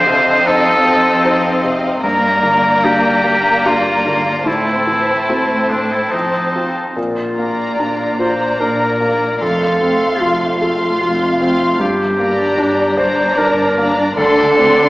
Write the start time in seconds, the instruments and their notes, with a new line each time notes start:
Already playing: felt piano F2, cello section F2, viola section D3, violin section C4 D#5 F5, oboe C5
0.06 felt piano C3
0.46 felt piano C4 D#4 C5, viola section C4, oboe A4
0.84 felt piano C4
1.24 felt piano C4 D#4 C5
1.64 felt piano C3
2.03 felt piano G2, cello section G2, violin section A#3 D5 A#5, viola section A#3, oboe A#4
2.43 felt piano D3
2.83 felt piano A#3 D4 G4, oboe G4
3.24 felt piano A#3
3.65 felt piano A#3 D4 G4, oboe F4
4.05 felt piano D3
4.46 felt piano A2, cello section A2, viola section A3, violin section C4 C5 A5, oboe E4
4.87 felt piano E3
5.29 felt piano A3 C4 E4
5.70 felt piano A3, oboe D4
5.93 oboe E4
6.12 felt piano F2, cello section F2, viola section C4, oboe D#4
6.55 felt piano C4 F4
6.96 double bass section A#1, felt piano A#2, cello section A#2, clarinet F4
7.38 felt piano A#3, viola section A#3, violin section D5 A#5
7.79 double bass section A#1, cello section A#2, felt piano D4
8.19 viola section A#3, felt piano F4, clarinet C5, violin section D5 A#5
8.60 double bass section A#1, cello section A#2, felt piano D4, clarinet A#4
9.00 felt piano A#3, viola section A#3, violin section D5 A#5
9.40 double bass section F1, felt piano F2, cello section F2, viola section A3, clarinet A4, violin section F5 C6
9.81 viola section A3, felt piano C4, violin section F5 C6
10.21 double bass section F1, cello section F2, felt piano F4, clarinet F4
10.59 viola section A3, felt piano A4, violin section F5 C6
11.01 double bass section F1, cello section F2, felt piano F4
11.39 viola section A3, felt piano C4, violin section F5 C6
11.80 double bass section G1, felt piano G2, cello section G2, clarinet G4
12.19 felt piano A#3, viola section D4, violin section D5 A#5
12.58 double bass section G1, cello section G2, felt piano D4
12.97 viola section D4, clarinet C5, felt piano D5, violin section D5 A#5
13.38 double bass section G1, cello section G2, felt piano D4, clarinet A#4
13.78 felt piano A#3, viola section D4, violin section D5 A#5
14.17 double bass section D2, felt piano D2, cello section D3, viola section D4, clarinet A4, violin section D5 C6
14.56 felt piano C4, viola section D4, violin section D5 C6